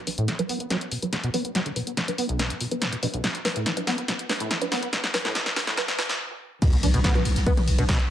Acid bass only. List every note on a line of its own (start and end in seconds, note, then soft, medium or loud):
0.18 0.30 A2 loud
0.28 0.34 E3 medium
0.49 0.58 B3 loud
0.60 0.66 B3 medium
0.70 0.76 F#3 loud
0.92 0.98 B2 medium
1.02 1.11 F#3 medium
1.13 1.16 C#3 medium
1.24 1.29 B2 medium
1.34 1.43 B3 loud
1.45 1.50 B3 medium
1.55 1.61 F#3 loud
1.66 1.71 D3 medium
1.76 1.82 B2 medium
1.87 1.95 B3 medium
1.97 2.01 C#3 medium
2.18 2.27 B3 loud
2.29 2.52 B1 loud
2.50 2.54 C#3 medium
2.61 2.67 B2 medium
2.71 2.83 B3 medium
2.82 2.91 A2 loud
2.92 2.96 B2 medium
3.03 3.06 B2 loud
3.14 3.22 B1 loud
3.24 3.28 B2 medium
3.56 3.66 A2 medium
3.66 3.72 E3 medium
3.87 3.96 B3 loud
3.98 4.04 B3 medium
4.08 4.12 B2 medium
4.40 4.50 A2 medium
4.51 4.57 E3 medium
4.72 4.81 B3 loud
4.83 4.88 B3 medium
4.93 4.96 B2 medium
5.25 5.34 A2 loud
5.35 5.39 B2 medium
5.67 5.76 A2 loud
5.77 5.81 B2 medium
5.99 6.02 B2 medium
6.62 6.71 B2 medium
6.73 6.76 B2 medium
6.83 6.89 D4 medium
6.94 7.00 B2 loud
7.04 7.13 B3 loud
7.15 7.19 B2 medium
7.47 7.53 B3 loud
7.57 7.61 B2 medium
7.78 7.84 B2 loud
7.89 7.98 B2 loud